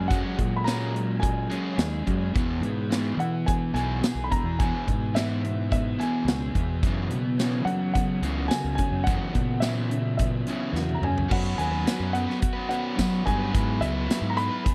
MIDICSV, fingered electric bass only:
0, 0, Header, 1, 2, 480
1, 0, Start_track
1, 0, Tempo, 559701
1, 86, Time_signature, 4, 2, 24, 8
1, 12646, End_track
2, 0, Start_track
2, 0, Title_t, "Fingered electric bass"
2, 0, Program_c, 0, 33
2, 0, Note_on_c, 0, 42, 85
2, 184, Note_off_c, 0, 42, 0
2, 331, Note_on_c, 0, 46, 81
2, 1255, Note_off_c, 0, 46, 0
2, 1525, Note_on_c, 0, 39, 83
2, 1753, Note_off_c, 0, 39, 0
2, 1773, Note_on_c, 0, 42, 87
2, 1997, Note_off_c, 0, 42, 0
2, 2017, Note_on_c, 0, 40, 97
2, 2231, Note_off_c, 0, 40, 0
2, 2236, Note_on_c, 0, 44, 84
2, 2695, Note_off_c, 0, 44, 0
2, 2719, Note_on_c, 0, 52, 71
2, 3176, Note_off_c, 0, 52, 0
2, 3206, Note_on_c, 0, 35, 86
2, 3434, Note_off_c, 0, 35, 0
2, 3560, Note_on_c, 0, 35, 90
2, 3678, Note_off_c, 0, 35, 0
2, 3805, Note_on_c, 0, 40, 82
2, 4034, Note_off_c, 0, 40, 0
2, 4177, Note_on_c, 0, 44, 94
2, 5102, Note_off_c, 0, 44, 0
2, 5358, Note_on_c, 0, 37, 84
2, 5591, Note_off_c, 0, 37, 0
2, 5617, Note_on_c, 0, 40, 96
2, 5842, Note_off_c, 0, 40, 0
2, 5858, Note_on_c, 0, 42, 105
2, 6082, Note_off_c, 0, 42, 0
2, 6089, Note_on_c, 0, 47, 91
2, 6544, Note_off_c, 0, 47, 0
2, 6563, Note_on_c, 0, 54, 75
2, 7020, Note_off_c, 0, 54, 0
2, 7048, Note_on_c, 0, 37, 84
2, 7277, Note_off_c, 0, 37, 0
2, 7412, Note_on_c, 0, 37, 96
2, 7526, Note_off_c, 0, 37, 0
2, 7642, Note_on_c, 0, 42, 78
2, 7874, Note_off_c, 0, 42, 0
2, 8018, Note_on_c, 0, 46, 87
2, 8941, Note_off_c, 0, 46, 0
2, 9202, Note_on_c, 0, 40, 87
2, 9433, Note_off_c, 0, 40, 0
2, 9447, Note_on_c, 0, 42, 89
2, 9675, Note_off_c, 0, 42, 0
2, 9698, Note_on_c, 0, 42, 95
2, 9921, Note_off_c, 0, 42, 0
2, 9933, Note_on_c, 0, 39, 78
2, 10158, Note_off_c, 0, 39, 0
2, 10288, Note_on_c, 0, 42, 86
2, 10514, Note_off_c, 0, 42, 0
2, 11135, Note_on_c, 0, 54, 81
2, 11357, Note_off_c, 0, 54, 0
2, 11374, Note_on_c, 0, 43, 91
2, 11596, Note_off_c, 0, 43, 0
2, 11617, Note_on_c, 0, 44, 88
2, 11834, Note_off_c, 0, 44, 0
2, 11839, Note_on_c, 0, 37, 80
2, 12067, Note_off_c, 0, 37, 0
2, 12189, Note_on_c, 0, 44, 83
2, 12420, Note_off_c, 0, 44, 0
2, 12646, End_track
0, 0, End_of_file